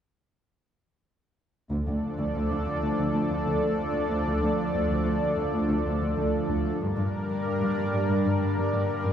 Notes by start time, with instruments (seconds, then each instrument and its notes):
1.70 cello section D2, analog synth pad F3 D4 A4 D5
1.87 cello section D2
2.19 cello section D2
2.35 cello section D2
2.51 cello section D2
2.67 cello section D2
2.83 cello section D2
2.98 cello section D2
3.14 cello section D2
3.30 cello section D2
3.46 cello section D2
3.62 cello section D2
3.94 cello section D2
4.10 cello section D2
4.27 cello section D2
4.42 cello section D2
4.74 cello section D2
4.90 cello section D2
5.06 cello section D2
5.22 cello section D2
5.37 cello section D2
5.54 cello section D2
5.69 cello section D2
5.86 cello section D2
6.02 cello section D2
6.17 cello section D2
6.49 cello section D2
6.65 cello section D2
6.80 cello section G2, analog synth pad G3 D4 A#4 D5
6.98 cello section G2
7.29 cello section G2
7.45 cello section G2
7.62 cello section G2
7.78 cello section G2
7.94 cello section G2
8.09 cello section G2
8.25 cello section G2
8.42 cello section G2
8.58 cello section G2
8.73 cello section G2
9.05 cello section G2